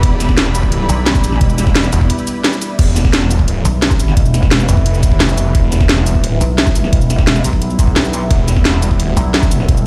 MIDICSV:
0, 0, Header, 1, 6, 480
1, 0, Start_track
1, 0, Key_signature, 1, "minor"
1, 0, Tempo, 344828
1, 42, Time_signature, 4, 2, 24, 8
1, 13735, End_track
2, 0, Start_track
2, 0, Title_t, "String section"
2, 0, Program_c, 0, 48
2, 0, Note_on_c, 0, 64, 78
2, 0, Note_on_c, 0, 67, 74
2, 0, Note_on_c, 0, 71, 73
2, 0, Note_on_c, 0, 83, 73
2, 3882, Note_off_c, 0, 64, 0
2, 3882, Note_off_c, 0, 67, 0
2, 3883, Note_off_c, 0, 71, 0
2, 3907, Note_off_c, 0, 83, 0
2, 13735, End_track
3, 0, Start_track
3, 0, Title_t, "Ambient pad"
3, 0, Program_c, 1, 92
3, 0, Note_on_c, 1, 55, 84
3, 0, Note_on_c, 1, 59, 77
3, 0, Note_on_c, 1, 64, 77
3, 0, Note_on_c, 1, 74, 92
3, 3827, Note_off_c, 1, 55, 0
3, 3827, Note_off_c, 1, 59, 0
3, 3827, Note_off_c, 1, 64, 0
3, 3850, Note_off_c, 1, 74, 0
3, 3881, Note_on_c, 1, 55, 82
3, 3881, Note_on_c, 1, 71, 92
3, 3882, Note_on_c, 1, 59, 77
3, 3882, Note_on_c, 1, 64, 79
3, 11530, Note_off_c, 1, 71, 0
3, 11560, Note_on_c, 1, 69, 96
3, 13735, Note_off_c, 1, 55, 0
3, 13735, Note_off_c, 1, 59, 0
3, 13735, Note_off_c, 1, 64, 0
3, 13735, Note_off_c, 1, 69, 0
3, 13735, End_track
4, 0, Start_track
4, 0, Title_t, "Wobble bass"
4, 0, Program_c, 2, 39
4, 1242, Note_on_c, 2, 35, 102
4, 1943, Note_off_c, 2, 35, 0
4, 1961, Note_on_c, 2, 28, 93
4, 2662, Note_off_c, 2, 28, 0
4, 5083, Note_on_c, 2, 35, 101
4, 5784, Note_off_c, 2, 35, 0
4, 5802, Note_on_c, 2, 28, 97
4, 6503, Note_off_c, 2, 28, 0
4, 8922, Note_on_c, 2, 35, 101
4, 9623, Note_off_c, 2, 35, 0
4, 9642, Note_on_c, 2, 28, 95
4, 10343, Note_off_c, 2, 28, 0
4, 10362, Note_on_c, 2, 35, 95
4, 11543, Note_off_c, 2, 35, 0
4, 12763, Note_on_c, 2, 35, 102
4, 13463, Note_off_c, 2, 35, 0
4, 13482, Note_on_c, 2, 28, 96
4, 13735, Note_off_c, 2, 28, 0
4, 13735, End_track
5, 0, Start_track
5, 0, Title_t, "Detuned saw bass"
5, 0, Program_c, 3, 39
5, 42, Note_on_c, 3, 28, 98
5, 1223, Note_off_c, 3, 28, 0
5, 2683, Note_on_c, 3, 28, 98
5, 2922, Note_off_c, 3, 28, 0
5, 3882, Note_on_c, 3, 28, 98
5, 5063, Note_off_c, 3, 28, 0
5, 6522, Note_on_c, 3, 29, 97
5, 7223, Note_off_c, 3, 29, 0
5, 7241, Note_on_c, 3, 29, 96
5, 7703, Note_off_c, 3, 29, 0
5, 7722, Note_on_c, 3, 28, 101
5, 8557, Note_off_c, 3, 28, 0
5, 8557, Note_on_c, 3, 27, 101
5, 8903, Note_off_c, 3, 27, 0
5, 11561, Note_on_c, 3, 28, 97
5, 12397, Note_off_c, 3, 28, 0
5, 12397, Note_on_c, 3, 27, 97
5, 12743, Note_off_c, 3, 27, 0
5, 13735, End_track
6, 0, Start_track
6, 0, Title_t, "Drums"
6, 42, Note_on_c, 9, 36, 115
6, 43, Note_on_c, 9, 42, 99
6, 182, Note_off_c, 9, 36, 0
6, 182, Note_off_c, 9, 42, 0
6, 283, Note_on_c, 9, 40, 36
6, 283, Note_on_c, 9, 42, 71
6, 283, Note_on_c, 9, 69, 65
6, 402, Note_on_c, 9, 36, 98
6, 403, Note_off_c, 9, 40, 0
6, 403, Note_on_c, 9, 40, 34
6, 422, Note_off_c, 9, 42, 0
6, 422, Note_off_c, 9, 69, 0
6, 522, Note_on_c, 9, 38, 118
6, 522, Note_on_c, 9, 42, 98
6, 541, Note_off_c, 9, 36, 0
6, 542, Note_off_c, 9, 40, 0
6, 642, Note_on_c, 9, 40, 35
6, 661, Note_off_c, 9, 38, 0
6, 661, Note_off_c, 9, 42, 0
6, 762, Note_on_c, 9, 42, 69
6, 762, Note_on_c, 9, 69, 63
6, 781, Note_off_c, 9, 40, 0
6, 882, Note_on_c, 9, 36, 59
6, 901, Note_off_c, 9, 42, 0
6, 901, Note_off_c, 9, 69, 0
6, 1001, Note_on_c, 9, 42, 97
6, 1021, Note_off_c, 9, 36, 0
6, 1141, Note_off_c, 9, 42, 0
6, 1241, Note_on_c, 9, 42, 70
6, 1241, Note_on_c, 9, 69, 64
6, 1381, Note_off_c, 9, 42, 0
6, 1381, Note_off_c, 9, 69, 0
6, 1481, Note_on_c, 9, 38, 116
6, 1481, Note_on_c, 9, 42, 98
6, 1602, Note_on_c, 9, 36, 103
6, 1602, Note_on_c, 9, 69, 30
6, 1621, Note_off_c, 9, 38, 0
6, 1621, Note_off_c, 9, 42, 0
6, 1722, Note_off_c, 9, 69, 0
6, 1722, Note_on_c, 9, 42, 68
6, 1722, Note_on_c, 9, 69, 63
6, 1741, Note_off_c, 9, 36, 0
6, 1842, Note_on_c, 9, 40, 32
6, 1861, Note_off_c, 9, 42, 0
6, 1861, Note_off_c, 9, 69, 0
6, 1961, Note_on_c, 9, 36, 118
6, 1962, Note_on_c, 9, 42, 100
6, 1982, Note_off_c, 9, 40, 0
6, 2083, Note_on_c, 9, 69, 29
6, 2101, Note_off_c, 9, 36, 0
6, 2101, Note_off_c, 9, 42, 0
6, 2202, Note_off_c, 9, 69, 0
6, 2202, Note_on_c, 9, 40, 37
6, 2202, Note_on_c, 9, 42, 71
6, 2202, Note_on_c, 9, 69, 63
6, 2322, Note_on_c, 9, 36, 102
6, 2323, Note_off_c, 9, 40, 0
6, 2323, Note_on_c, 9, 40, 36
6, 2341, Note_off_c, 9, 42, 0
6, 2341, Note_off_c, 9, 69, 0
6, 2442, Note_on_c, 9, 38, 123
6, 2442, Note_on_c, 9, 42, 102
6, 2461, Note_off_c, 9, 36, 0
6, 2462, Note_off_c, 9, 40, 0
6, 2562, Note_on_c, 9, 40, 37
6, 2562, Note_on_c, 9, 69, 29
6, 2581, Note_off_c, 9, 38, 0
6, 2581, Note_off_c, 9, 42, 0
6, 2680, Note_off_c, 9, 69, 0
6, 2680, Note_on_c, 9, 46, 74
6, 2680, Note_on_c, 9, 69, 64
6, 2701, Note_off_c, 9, 40, 0
6, 2802, Note_on_c, 9, 36, 61
6, 2819, Note_off_c, 9, 46, 0
6, 2819, Note_off_c, 9, 69, 0
6, 2920, Note_on_c, 9, 42, 103
6, 2941, Note_off_c, 9, 36, 0
6, 3042, Note_on_c, 9, 69, 30
6, 3060, Note_off_c, 9, 42, 0
6, 3162, Note_off_c, 9, 69, 0
6, 3162, Note_on_c, 9, 42, 73
6, 3162, Note_on_c, 9, 69, 66
6, 3301, Note_off_c, 9, 42, 0
6, 3301, Note_off_c, 9, 69, 0
6, 3402, Note_on_c, 9, 38, 115
6, 3402, Note_on_c, 9, 42, 98
6, 3522, Note_on_c, 9, 69, 30
6, 3541, Note_off_c, 9, 38, 0
6, 3541, Note_off_c, 9, 42, 0
6, 3641, Note_off_c, 9, 69, 0
6, 3641, Note_on_c, 9, 42, 73
6, 3641, Note_on_c, 9, 69, 61
6, 3781, Note_off_c, 9, 42, 0
6, 3781, Note_off_c, 9, 69, 0
6, 3882, Note_on_c, 9, 36, 122
6, 3882, Note_on_c, 9, 42, 99
6, 3882, Note_on_c, 9, 49, 111
6, 4021, Note_off_c, 9, 36, 0
6, 4021, Note_off_c, 9, 42, 0
6, 4021, Note_off_c, 9, 49, 0
6, 4123, Note_on_c, 9, 40, 38
6, 4123, Note_on_c, 9, 42, 70
6, 4123, Note_on_c, 9, 69, 60
6, 4242, Note_off_c, 9, 40, 0
6, 4242, Note_on_c, 9, 36, 109
6, 4242, Note_on_c, 9, 40, 37
6, 4262, Note_off_c, 9, 42, 0
6, 4262, Note_off_c, 9, 69, 0
6, 4362, Note_on_c, 9, 38, 123
6, 4362, Note_on_c, 9, 42, 101
6, 4381, Note_off_c, 9, 36, 0
6, 4381, Note_off_c, 9, 40, 0
6, 4483, Note_on_c, 9, 40, 38
6, 4501, Note_off_c, 9, 38, 0
6, 4501, Note_off_c, 9, 42, 0
6, 4602, Note_on_c, 9, 42, 70
6, 4602, Note_on_c, 9, 69, 60
6, 4622, Note_off_c, 9, 40, 0
6, 4722, Note_on_c, 9, 36, 61
6, 4741, Note_off_c, 9, 42, 0
6, 4741, Note_off_c, 9, 69, 0
6, 4842, Note_on_c, 9, 42, 100
6, 4861, Note_off_c, 9, 36, 0
6, 4982, Note_off_c, 9, 42, 0
6, 5082, Note_on_c, 9, 42, 72
6, 5082, Note_on_c, 9, 69, 60
6, 5221, Note_off_c, 9, 42, 0
6, 5221, Note_off_c, 9, 69, 0
6, 5321, Note_on_c, 9, 38, 118
6, 5321, Note_on_c, 9, 42, 98
6, 5442, Note_on_c, 9, 36, 105
6, 5442, Note_on_c, 9, 69, 29
6, 5460, Note_off_c, 9, 38, 0
6, 5460, Note_off_c, 9, 42, 0
6, 5562, Note_off_c, 9, 69, 0
6, 5562, Note_on_c, 9, 42, 72
6, 5562, Note_on_c, 9, 69, 61
6, 5581, Note_off_c, 9, 36, 0
6, 5682, Note_on_c, 9, 40, 36
6, 5701, Note_off_c, 9, 42, 0
6, 5701, Note_off_c, 9, 69, 0
6, 5802, Note_on_c, 9, 36, 127
6, 5803, Note_on_c, 9, 42, 100
6, 5821, Note_off_c, 9, 40, 0
6, 5923, Note_on_c, 9, 69, 28
6, 5941, Note_off_c, 9, 36, 0
6, 5942, Note_off_c, 9, 42, 0
6, 6043, Note_off_c, 9, 69, 0
6, 6043, Note_on_c, 9, 40, 39
6, 6043, Note_on_c, 9, 42, 66
6, 6043, Note_on_c, 9, 69, 57
6, 6162, Note_off_c, 9, 40, 0
6, 6162, Note_on_c, 9, 36, 108
6, 6162, Note_on_c, 9, 40, 36
6, 6182, Note_off_c, 9, 42, 0
6, 6182, Note_off_c, 9, 69, 0
6, 6282, Note_on_c, 9, 38, 127
6, 6282, Note_on_c, 9, 42, 96
6, 6301, Note_off_c, 9, 36, 0
6, 6301, Note_off_c, 9, 40, 0
6, 6403, Note_on_c, 9, 40, 39
6, 6403, Note_on_c, 9, 69, 27
6, 6421, Note_off_c, 9, 38, 0
6, 6421, Note_off_c, 9, 42, 0
6, 6523, Note_off_c, 9, 69, 0
6, 6523, Note_on_c, 9, 46, 79
6, 6523, Note_on_c, 9, 69, 58
6, 6542, Note_off_c, 9, 40, 0
6, 6642, Note_on_c, 9, 36, 64
6, 6663, Note_off_c, 9, 46, 0
6, 6663, Note_off_c, 9, 69, 0
6, 6762, Note_on_c, 9, 42, 98
6, 6781, Note_off_c, 9, 36, 0
6, 6882, Note_on_c, 9, 69, 28
6, 6901, Note_off_c, 9, 42, 0
6, 7001, Note_off_c, 9, 69, 0
6, 7001, Note_on_c, 9, 42, 68
6, 7001, Note_on_c, 9, 69, 60
6, 7002, Note_on_c, 9, 36, 111
6, 7122, Note_off_c, 9, 36, 0
6, 7122, Note_on_c, 9, 36, 62
6, 7140, Note_off_c, 9, 42, 0
6, 7140, Note_off_c, 9, 69, 0
6, 7241, Note_on_c, 9, 38, 126
6, 7241, Note_on_c, 9, 42, 96
6, 7261, Note_off_c, 9, 36, 0
6, 7362, Note_on_c, 9, 69, 28
6, 7380, Note_off_c, 9, 38, 0
6, 7380, Note_off_c, 9, 42, 0
6, 7483, Note_off_c, 9, 69, 0
6, 7483, Note_on_c, 9, 42, 69
6, 7483, Note_on_c, 9, 69, 59
6, 7622, Note_off_c, 9, 42, 0
6, 7622, Note_off_c, 9, 69, 0
6, 7722, Note_on_c, 9, 36, 127
6, 7722, Note_on_c, 9, 42, 92
6, 7861, Note_off_c, 9, 36, 0
6, 7861, Note_off_c, 9, 42, 0
6, 7962, Note_on_c, 9, 40, 37
6, 7962, Note_on_c, 9, 42, 66
6, 7962, Note_on_c, 9, 69, 57
6, 8082, Note_off_c, 9, 40, 0
6, 8082, Note_on_c, 9, 36, 112
6, 8082, Note_on_c, 9, 40, 38
6, 8102, Note_off_c, 9, 42, 0
6, 8102, Note_off_c, 9, 69, 0
6, 8202, Note_on_c, 9, 38, 127
6, 8202, Note_on_c, 9, 42, 93
6, 8221, Note_off_c, 9, 36, 0
6, 8222, Note_off_c, 9, 40, 0
6, 8321, Note_on_c, 9, 40, 37
6, 8341, Note_off_c, 9, 38, 0
6, 8341, Note_off_c, 9, 42, 0
6, 8441, Note_on_c, 9, 42, 66
6, 8441, Note_on_c, 9, 69, 59
6, 8460, Note_off_c, 9, 40, 0
6, 8562, Note_on_c, 9, 36, 65
6, 8580, Note_off_c, 9, 42, 0
6, 8580, Note_off_c, 9, 69, 0
6, 8681, Note_on_c, 9, 42, 94
6, 8701, Note_off_c, 9, 36, 0
6, 8821, Note_off_c, 9, 42, 0
6, 8923, Note_on_c, 9, 42, 67
6, 8923, Note_on_c, 9, 69, 61
6, 9062, Note_off_c, 9, 42, 0
6, 9062, Note_off_c, 9, 69, 0
6, 9162, Note_on_c, 9, 38, 127
6, 9162, Note_on_c, 9, 42, 91
6, 9282, Note_on_c, 9, 36, 109
6, 9283, Note_on_c, 9, 69, 27
6, 9301, Note_off_c, 9, 38, 0
6, 9301, Note_off_c, 9, 42, 0
6, 9403, Note_off_c, 9, 69, 0
6, 9403, Note_on_c, 9, 42, 67
6, 9403, Note_on_c, 9, 69, 57
6, 9421, Note_off_c, 9, 36, 0
6, 9523, Note_on_c, 9, 40, 36
6, 9542, Note_off_c, 9, 42, 0
6, 9542, Note_off_c, 9, 69, 0
6, 9642, Note_on_c, 9, 36, 126
6, 9643, Note_on_c, 9, 42, 93
6, 9662, Note_off_c, 9, 40, 0
6, 9763, Note_on_c, 9, 69, 27
6, 9781, Note_off_c, 9, 36, 0
6, 9782, Note_off_c, 9, 42, 0
6, 9884, Note_off_c, 9, 69, 0
6, 9884, Note_on_c, 9, 40, 36
6, 9884, Note_on_c, 9, 42, 67
6, 9884, Note_on_c, 9, 69, 58
6, 10002, Note_on_c, 9, 36, 110
6, 10003, Note_off_c, 9, 40, 0
6, 10003, Note_on_c, 9, 40, 36
6, 10023, Note_off_c, 9, 42, 0
6, 10023, Note_off_c, 9, 69, 0
6, 10121, Note_on_c, 9, 38, 126
6, 10121, Note_on_c, 9, 42, 91
6, 10141, Note_off_c, 9, 36, 0
6, 10142, Note_off_c, 9, 40, 0
6, 10242, Note_on_c, 9, 40, 35
6, 10242, Note_on_c, 9, 69, 26
6, 10261, Note_off_c, 9, 38, 0
6, 10261, Note_off_c, 9, 42, 0
6, 10362, Note_off_c, 9, 69, 0
6, 10362, Note_on_c, 9, 46, 86
6, 10362, Note_on_c, 9, 69, 58
6, 10381, Note_off_c, 9, 40, 0
6, 10482, Note_on_c, 9, 36, 62
6, 10501, Note_off_c, 9, 46, 0
6, 10501, Note_off_c, 9, 69, 0
6, 10602, Note_on_c, 9, 42, 88
6, 10621, Note_off_c, 9, 36, 0
6, 10722, Note_on_c, 9, 69, 28
6, 10741, Note_off_c, 9, 42, 0
6, 10842, Note_off_c, 9, 69, 0
6, 10842, Note_on_c, 9, 36, 114
6, 10842, Note_on_c, 9, 42, 65
6, 10842, Note_on_c, 9, 69, 59
6, 10961, Note_off_c, 9, 36, 0
6, 10961, Note_on_c, 9, 36, 65
6, 10981, Note_off_c, 9, 42, 0
6, 10981, Note_off_c, 9, 69, 0
6, 11082, Note_on_c, 9, 38, 126
6, 11082, Note_on_c, 9, 42, 89
6, 11101, Note_off_c, 9, 36, 0
6, 11202, Note_on_c, 9, 69, 27
6, 11221, Note_off_c, 9, 38, 0
6, 11221, Note_off_c, 9, 42, 0
6, 11322, Note_off_c, 9, 69, 0
6, 11322, Note_on_c, 9, 42, 64
6, 11322, Note_on_c, 9, 69, 59
6, 11461, Note_off_c, 9, 42, 0
6, 11461, Note_off_c, 9, 69, 0
6, 11562, Note_on_c, 9, 36, 121
6, 11562, Note_on_c, 9, 42, 88
6, 11701, Note_off_c, 9, 36, 0
6, 11701, Note_off_c, 9, 42, 0
6, 11803, Note_on_c, 9, 40, 36
6, 11803, Note_on_c, 9, 42, 67
6, 11803, Note_on_c, 9, 69, 64
6, 11922, Note_on_c, 9, 36, 104
6, 11923, Note_off_c, 9, 40, 0
6, 11923, Note_on_c, 9, 40, 34
6, 11942, Note_off_c, 9, 42, 0
6, 11942, Note_off_c, 9, 69, 0
6, 12043, Note_on_c, 9, 38, 119
6, 12043, Note_on_c, 9, 42, 90
6, 12061, Note_off_c, 9, 36, 0
6, 12062, Note_off_c, 9, 40, 0
6, 12163, Note_on_c, 9, 40, 36
6, 12182, Note_off_c, 9, 38, 0
6, 12182, Note_off_c, 9, 42, 0
6, 12283, Note_on_c, 9, 42, 65
6, 12283, Note_on_c, 9, 69, 59
6, 12302, Note_off_c, 9, 40, 0
6, 12402, Note_on_c, 9, 36, 61
6, 12422, Note_off_c, 9, 42, 0
6, 12422, Note_off_c, 9, 69, 0
6, 12522, Note_on_c, 9, 42, 89
6, 12541, Note_off_c, 9, 36, 0
6, 12662, Note_off_c, 9, 42, 0
6, 12763, Note_on_c, 9, 42, 65
6, 12763, Note_on_c, 9, 69, 63
6, 12902, Note_off_c, 9, 42, 0
6, 12902, Note_off_c, 9, 69, 0
6, 13002, Note_on_c, 9, 38, 121
6, 13002, Note_on_c, 9, 42, 90
6, 13121, Note_on_c, 9, 36, 109
6, 13123, Note_on_c, 9, 69, 29
6, 13141, Note_off_c, 9, 38, 0
6, 13141, Note_off_c, 9, 42, 0
6, 13242, Note_off_c, 9, 69, 0
6, 13242, Note_on_c, 9, 42, 66
6, 13242, Note_on_c, 9, 69, 60
6, 13260, Note_off_c, 9, 36, 0
6, 13364, Note_on_c, 9, 40, 31
6, 13382, Note_off_c, 9, 42, 0
6, 13382, Note_off_c, 9, 69, 0
6, 13481, Note_on_c, 9, 36, 119
6, 13483, Note_on_c, 9, 42, 94
6, 13503, Note_off_c, 9, 40, 0
6, 13603, Note_on_c, 9, 69, 29
6, 13620, Note_off_c, 9, 36, 0
6, 13622, Note_off_c, 9, 42, 0
6, 13735, Note_off_c, 9, 69, 0
6, 13735, End_track
0, 0, End_of_file